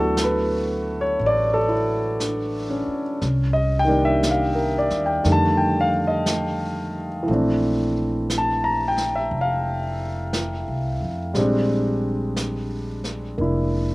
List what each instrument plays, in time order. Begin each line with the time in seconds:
Already playing: upright bass D2, grand piano E3 F#3 A3 B3 D4 F#4
0.00 grand piano A4
0.17 brush sweep, snare, hi-hat pedal
0.24 grand piano B4
1.01 grand piano C#5
1.19 upright bass A1, brush sweep
1.26 grand piano D5
1.54 grand piano A4
1.68 grand piano E4
2.20 grand piano D4, brush sweep, snare, hi-hat pedal
2.70 grand piano C#4
2.88 muted upright bass stroke
3.22 upright bass C2, brush sweep, snare
3.53 grand piano D#5
3.79 grand piano G5
3.84 grand piano D#3 G3 A#3
3.89 grand piano D4
4.05 grand piano E5
4.23 brush sweep, snare, hi-hat pedal
4.31 grand piano F5
4.55 grand piano A#4
4.78 grand piano D5
4.90 upright bass D#2, snare
5.06 grand piano G5
5.23 upright bass F2, grand piano D3 D#3 G3 A3, brush sweep, snare
5.32 grand piano A5
5.57 grand piano G5
5.81 grand piano F5
6.07 grand piano D#5
6.26 brush sweep, snare, hi-hat pedal
7.23 grand piano E3 A3
7.28 upright bass A#1, grand piano C4, brush sweep
7.34 grand piano D4
8.30 brush sweep, snare, hi-hat pedal
8.38 grand piano A5
8.64 grand piano A#5
8.88 grand piano G5
8.97 snare
9.15 grand piano E5
9.31 upright bass F1, brush sweep
9.41 grand piano F5
10.33 brush sweep, snare, hi-hat pedal
10.68 upright bass C2
11.01 upright bass F2
11.33 upright bass A#1, grand piano G3 G#3 C4, brush sweep, snare
11.39 grand piano D4
12.37 brush sweep, snare, hi-hat pedal
13.04 snare
13.37 upright bass F1, grand piano A#3 D4 E4, brush sweep